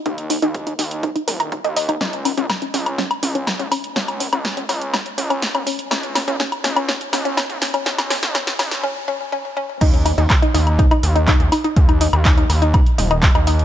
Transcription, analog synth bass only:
X:1
M:4/4
L:1/16
Q:1/4=123
K:Dbmix
V:1 name="Analog synth bass" clef=bass
E,,3 E,,3 E,,3 z E,,,3 E,,3 | D,,3 D,, z2 D,,3 z D,,3 D,, z2 | D,,3 D,,3 D,,3 z D,,3 A,,, z2 | D,,3 D,, z2 D,,3 z D,,3 D,, z2 |
D,,3 D,,3 D,,2 z8 | E,,3 E,, z2 E,,3 z E,,3 E,, z2 | E,,3 E,,3 E,,3 z E,,,3 E,,3 |]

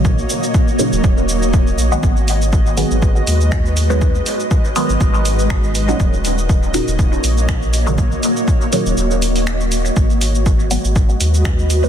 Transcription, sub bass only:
X:1
M:4/4
L:1/16
Q:"Swing 16ths" 1/4=121
K:G#m
V:1 name="Sub bass" clef=bass
A,,, z6 D,,, D,,,6 A,,, z | G,,,6 z G,,,2 z D,,6- | D,, z6 G,,, G,,,6- G,,, z | D,,,6 z D,,,2 z A,,,6- |
A,,, z6 D,,, D,,,6- D,,, z | G,,,6 z G,,,2 z D,,6 |]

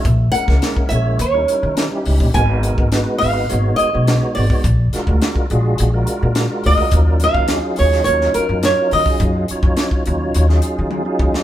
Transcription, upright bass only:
X:1
M:4/4
L:1/16
Q:1/4=105
K:Ebm
V:1 name="Upright bass" clef=bass
B,,,2 z D,, z2 B,,,2 E,,2 z E,2 z D,, B,,, | A,,,3 A,,,2 z A,,,2 A,,,2 z C,,2 z A,,, z | B,,,2 z =D,, z2 B,,,2 B,,,2 z B,,2 z D,, z | E,,3 E,,2 z E,,2 E,,2 z G,,2 z E, z |
G,,2 z G,, z2 E,,2 E,,2 z E,2 z E,, z |]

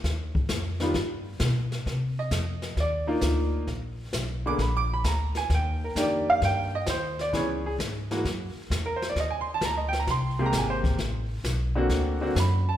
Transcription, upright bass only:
X:1
M:4/4
L:1/8
Q:"Swing" 1/4=132
K:Cm
V:1 name="Upright bass" clef=bass
E,,2 F,,2 G,,2 =B,,2 | C,2 F,,2 E,,2 D,,2 | B,,,2 _C,,2 B,,,2 D,,2 | E,,2 F,,2 G,,2 E,,2 |
_D,,2 A,,2 ^F,, z =E,,2 | E,,2 D,,2 C,,2 A,,,2 | =A,,,2 =B,,,2 D,,2 ^F,,2 |]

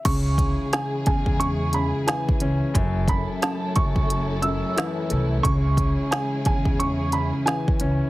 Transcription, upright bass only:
X:1
M:4/4
L:1/16
Q:"Swing 16ths" 1/4=89
K:C#m
V:1 name="Upright bass" clef=bass
C,,3 z3 E,,4- E,, z3 C,, z | F,,,3 z3 F,,,4- F,,, z3 ^B,,,2 | C,,3 z3 E,,4- E,, z3 C,, z |]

